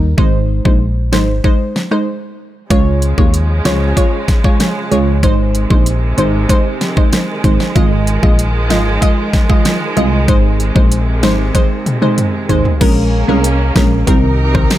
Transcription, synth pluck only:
0.18 0.61 G#3 medium
0.18 0.61 D#4 medium
0.18 0.62 C5 loud
0.65 0.85 G#3 medium
0.65 0.85 D#4 medium
0.65 0.85 C5 medium
1.12 1.32 G#3 medium
1.12 1.32 D#4 medium
1.12 1.33 C5 medium
1.44 1.64 G#3 medium
1.44 1.64 D#4 medium
1.44 1.64 C5 loud
1.91 2.07 G#3 medium
1.91 2.07 D#4 medium
1.91 2.07 C5 medium
2.70 3.14 G#3 medium
2.70 3.14 F4 medium
2.70 3.14 C#5 loud
3.18 3.38 G#3 medium
3.18 3.38 F4 medium
3.18 3.38 C#5 medium
3.65 3.85 G#3 medium
3.65 3.85 F4 medium
3.65 3.85 C#5 medium
3.96 4.17 G#3 medium
3.96 4.17 F4 medium
3.96 4.17 C#5 loud
4.44 4.64 G#3 medium
4.44 4.64 F4 medium
4.44 4.64 C#5 medium
4.91 5.11 G#3 medium
4.91 5.11 F4 medium
4.91 5.12 C#5 medium
5.23 5.67 G#3 loud
5.23 5.67 D#4 medium
5.23 5.67 C5 loud
5.70 5.90 G#3 medium
5.70 5.90 D#4 medium
5.70 5.91 C5 medium
6.18 6.38 G#3 medium
6.18 6.38 D#4 medium
6.18 6.38 C5 medium
6.49 6.69 G#3 medium
6.49 6.69 D#4 medium
6.49 6.69 C5 loud
6.97 7.17 G#3 medium
6.97 7.17 D#4 medium
6.97 7.17 C5 medium
7.44 7.64 G#3 medium
7.44 7.64 D#4 medium
7.44 7.64 C5 medium
7.75 8.19 G#3 loud
7.75 8.19 F4 medium
7.75 8.19 D#5 loud
8.23 8.43 G#3 medium
8.23 8.43 F4 medium
8.23 8.43 D#5 medium
8.70 8.90 G#3 medium
8.70 8.90 F4 medium
8.70 8.90 D#5 medium
9.02 9.22 G#3 medium
9.02 9.22 F4 medium
9.02 9.22 D#5 loud
9.49 9.69 G#3 medium
9.49 9.69 F4 medium
9.49 9.69 D#5 medium
9.96 10.16 G#3 medium
9.96 10.17 F4 medium
9.96 10.17 D#5 medium
10.28 10.72 G#3 loud
10.28 10.72 D#4 medium
10.28 10.72 C5 loud
10.75 10.95 G#3 medium
10.75 10.96 D#4 medium
10.75 10.96 C5 medium
11.23 11.43 G#3 medium
11.23 11.43 D#4 medium
11.23 11.43 C5 medium
11.54 11.74 G#3 medium
11.54 11.75 D#4 medium
11.54 11.75 C5 loud
12.02 12.22 G#3 medium
12.02 12.22 D#4 medium
12.02 12.22 C5 medium
12.49 12.69 G#3 medium
12.49 12.69 D#4 medium
12.49 12.69 C5 medium
12.81 13.24 G#3 loud
12.81 13.25 C#4 medium
12.81 13.25 A#4 loud
13.28 13.48 G#3 medium
13.28 13.48 C#4 medium
13.28 13.48 A#4 medium
13.76 13.95 G#3 medium
13.76 13.96 C#4 medium
13.76 13.96 A#4 medium
14.07 14.27 D#3 medium
14.07 14.27 C4 medium
14.07 14.27 A#4 loud
14.54 14.74 D#3 medium
14.54 14.74 C4 medium
14.54 14.75 A#4 medium

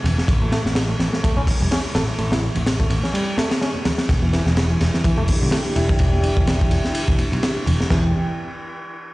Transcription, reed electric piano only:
0.42 0.51 A3 medium
0.52 0.61 A3 medium
0.89 0.96 A3 medium
1.13 1.20 A3 medium
1.24 1.36 A3 medium
1.37 1.41 C#4 loud
1.61 1.67 G3 medium
1.71 1.80 C#4 medium
1.95 2.03 A4 medium
2.19 2.31 A3 medium
2.32 2.42 E4 medium
2.80 3.02 A3 medium
3.03 3.13 C#4 medium
3.14 3.37 G3 loud
3.38 3.50 A3 loud
3.62 3.70 C#4 medium
4.23 4.32 E3 medium
4.33 4.41 E3 medium
4.70 4.77 E3 medium
4.94 5.01 E3 medium
5.05 5.17 E3 medium
5.18 5.22 A3 loud
5.42 5.48 D3 medium
5.52 5.60 A3 medium
5.76 5.84 E4 medium
7.90 8.12 E3 medium

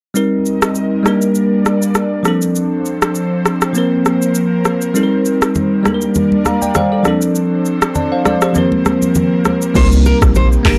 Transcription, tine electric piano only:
0.14 1.02 G3 medium
0.14 1.05 C4 medium
0.14 1.06 D#4 medium
0.14 1.06 A#4 medium
1.03 2.22 G3 medium
1.03 2.23 A#3 medium
1.03 2.23 D4 medium
1.08 2.24 A#4 medium
2.23 3.71 F3 medium
2.23 3.72 C4 medium
2.23 3.73 D4 medium
2.28 3.74 A4 medium
3.73 4.92 F3 medium
3.73 4.93 A#3 medium
3.73 4.93 C4 medium
3.78 4.94 A#4 medium
4.94 5.82 G3 medium
4.94 5.85 C4 medium
4.94 5.86 D#4 medium
4.94 5.03 A4 medium
5.03 5.89 A#4 medium
5.83 7.02 G3 medium
5.83 7.03 A#3 medium
5.83 7.03 D4 medium
5.88 5.94 A4 medium
5.94 6.49 A#4 medium
6.45 6.61 F5 medium
6.45 6.61 A#5 medium
6.62 6.75 D5 medium
6.62 6.75 G5 medium
6.75 6.91 C5 medium
6.75 6.91 F5 medium
6.92 7.07 A4 medium
6.92 7.20 D5 medium
7.03 8.51 F3 medium
7.03 8.52 C4 medium
7.03 8.53 D4 medium
7.08 7.95 A4 medium
7.95 8.11 D5 medium
7.95 8.11 A5 medium
8.12 8.25 C5 medium
8.12 8.25 F5 medium
8.25 8.41 A4 medium
8.25 8.41 D5 medium
8.42 8.71 G4 medium
8.42 8.70 C5 medium
8.53 9.72 F3 medium
8.53 9.73 A#3 medium
8.53 9.73 C4 medium
8.58 9.74 A#4 medium
9.74 10.65 G3 medium
9.74 10.62 A#3 medium
9.74 10.65 C4 medium
9.74 10.66 D#4 medium
9.74 10.66 A#4 medium
10.63 10.78 A#3 medium
10.63 10.78 D4 medium
10.68 10.78 G4 medium

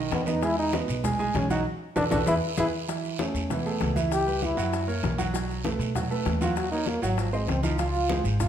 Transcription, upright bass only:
0.11 0.83 E2 loud
0.88 1.31 B1 medium
1.34 1.63 B1 loud
1.96 2.08 B1 medium
2.12 2.23 B1 loud
2.27 2.39 E2 loud
2.58 2.69 E2 loud
3.34 3.77 E2 medium
3.81 4.52 C#2 medium
4.57 5.00 F#2 medium
5.03 5.75 B1 loud
5.79 6.22 B2 medium
6.26 6.97 D#2 loud
7.02 7.45 G#1 medium
7.48 8.19 C#2 medium
8.24 8.48 G#1 medium

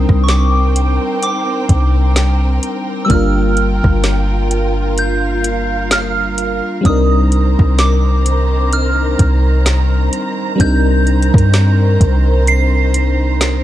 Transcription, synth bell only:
0.00 0.26 D#6 medium
0.24 0.29 C#6 medium
0.30 1.22 D6 medium
1.23 3.10 D6 medium
3.05 3.10 E6 medium
3.11 4.94 F6 loud
4.99 5.88 G6 medium
5.92 6.88 F6 medium
6.86 7.82 D#6 loud
7.80 8.76 D6 medium
8.73 10.66 F6 loud
10.61 12.53 G6 loud
12.48 13.38 C7 loud

